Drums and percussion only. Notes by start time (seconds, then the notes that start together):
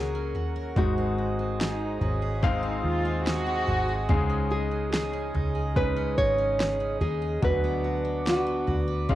0.35 floor tom
0.76 kick, floor tom
1.61 snare
2.01 floor tom
2.43 kick, floor tom
3.27 snare
3.67 floor tom
4.09 kick, floor tom
4.94 snare
5.34 floor tom
5.76 kick, floor tom
6.18 kick
6.60 snare
7.01 floor tom
7.43 kick, floor tom
8.27 snare
8.68 floor tom
9.09 kick, floor tom